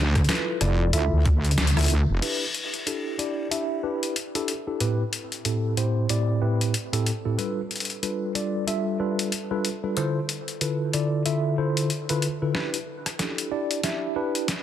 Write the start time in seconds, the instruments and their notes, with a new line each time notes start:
Already playing: wobble bass D2
0.15 kick, cross-stick, closed hi-hat
0.24 closed hi-hat
0.29 tine electric piano E4 F4 A4 B4, snare, closed hi-hat
0.35 closed hi-hat
0.61 wobble bass F1, tine electric piano E4 F4 A4 D5, cross-stick, closed hi-hat
0.93 wobble bass D2, tine electric piano E4 F4 A4 E5, closed hi-hat
1.12 wobble bass D2
1.25 kick, closed hi-hat
1.45 closed hi-hat
1.51 closed hi-hat
1.58 wobble bass D2, snare, closed hi-hat
1.67 closed hi-hat
1.77 tine electric piano E4 F4 A4 E5, cross-stick, closed hi-hat
1.79 closed hi-hat
1.81 closed hi-hat
1.83 closed hi-hat
1.84 closed hi-hat
1.86 closed hi-hat
1.88 closed hi-hat
1.90 closed hi-hat
2.09 wobble bass F1
2.22 tine electric piano D4 E4 G4 B4, closed hi-hat, crash
2.55 closed hi-hat
2.74 closed hi-hat
2.87 tine electric piano D4 E4 G4 A4, closed hi-hat
3.19 tine electric piano D4 E4 G4 D5, closed hi-hat
3.51 tine electric piano D4 E4 G4 E5, closed hi-hat
3.83 tine electric piano D4 E4 G4 B4
4.03 closed hi-hat
4.16 closed hi-hat
4.35 tine electric piano D4 E4 G4 A4, closed hi-hat
4.48 closed hi-hat
4.67 tine electric piano D4 E4 G4 A4
4.80 tine electric piano A2 C4 E4 G4 B4, closed hi-hat
5.13 closed hi-hat
5.32 closed hi-hat
5.45 tine electric piano A2 C4 E4 G4 A4, closed hi-hat
5.77 tine electric piano A2 C4 E4 G4 C5, closed hi-hat
6.09 tine electric piano A2 C4 E4 G4 D5, closed hi-hat
6.42 tine electric piano A2 C4 E4 G4 B4
6.61 closed hi-hat
6.74 closed hi-hat
6.93 tine electric piano A2 C4 E4 G4 A4, closed hi-hat
7.06 closed hi-hat
7.25 tine electric piano A2 C4 E4 G4 A4
7.38 tine electric piano G3 D4 F4 A4 B4, closed hi-hat
7.71 closed hi-hat
7.76 closed hi-hat
7.80 closed hi-hat
7.85 closed hi-hat
7.90 closed hi-hat
8.03 tine electric piano G3 D4 F4 A4 B4, closed hi-hat
8.35 tine electric piano G3 D4 F4 A4 D5, closed hi-hat
8.67 tine electric piano G3 D4 F4 A4 E5, closed hi-hat
9.00 tine electric piano G3 D4 F4 A4 B4
9.19 closed hi-hat
9.32 closed hi-hat
9.51 tine electric piano G3 D4 F4 A4 B4
9.65 closed hi-hat
9.84 tine electric piano G3 D4 F4 A4 B4
9.97 tine electric piano D3 E4 F4 A4 C5, closed hi-hat
10.29 closed hi-hat
10.48 closed hi-hat
10.61 tine electric piano D3 E4 F4 A4 B4, closed hi-hat
10.93 tine electric piano D3 E4 F4 A4 D5, closed hi-hat
11.26 tine electric piano D3 E4 F4 A4 E5, closed hi-hat
11.58 tine electric piano D3 E4 F4 A4 C5
11.77 closed hi-hat
11.90 closed hi-hat
12.09 tine electric piano D3 E4 F4 A4 B4, closed hi-hat
12.22 closed hi-hat
12.42 tine electric piano D3 E4 F4 A4 B4
12.55 tine electric piano D4 E4 G4 B4, kick, snare
12.74 closed hi-hat
13.06 cross-stick, closed hi-hat
13.19 tine electric piano D4 E4 G4 A4, kick, snare, closed hi-hat
13.38 closed hi-hat
13.52 tine electric piano D4 E4 G4 D5
13.71 closed hi-hat
13.84 tine electric piano D4 E4 G4 E5, kick, snare, closed hi-hat
14.16 tine electric piano D4 E4 G4 B4
14.35 closed hi-hat
14.48 kick, snare, closed hi-hat